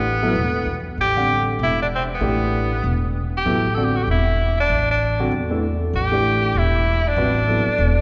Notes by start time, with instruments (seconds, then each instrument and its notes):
Already playing: upright bass A1, tenor saxophone B3
0.23 grand piano F#3 B3 E4 A4
0.35 upright bass E1
0.66 upright bass E2
0.98 upright bass A1, tenor saxophone G4
1.16 grand piano D3 G3 C4 F#5
1.59 upright bass E1
1.63 tenor saxophone E4
1.82 tenor saxophone D4
1.96 tenor saxophone C4
2.15 tenor saxophone B3
2.21 upright bass A1, grand piano E3 A3 D4 G4
2.84 upright bass E1
3.37 tenor saxophone G4
3.46 upright bass A1, grand piano F#3 B3 E4 A4
3.75 grand piano D3 G3 C4 F#4, tenor saxophone A4
3.84 tenor saxophone G4
3.96 tenor saxophone F#4
4.03 tenor saxophone G4
4.07 upright bass E1, tenor saxophone E4
4.60 tenor saxophone D4
4.70 upright bass A1
4.91 tenor saxophone D4
5.20 grand piano D3 G3 C4 F#4
5.32 upright bass E2
5.51 grand piano E3 A3 D4 A4
5.93 upright bass A1, tenor saxophone G4
6.11 grand piano E3 A3 D4 G4
6.55 upright bass E1, tenor saxophone E4
7.08 tenor saxophone D4
7.16 upright bass A1, grand piano G3 C4 F#4 B4
7.47 grand piano F#3 B3 E4 A4
7.66 muted upright bass stroke
7.78 upright bass E1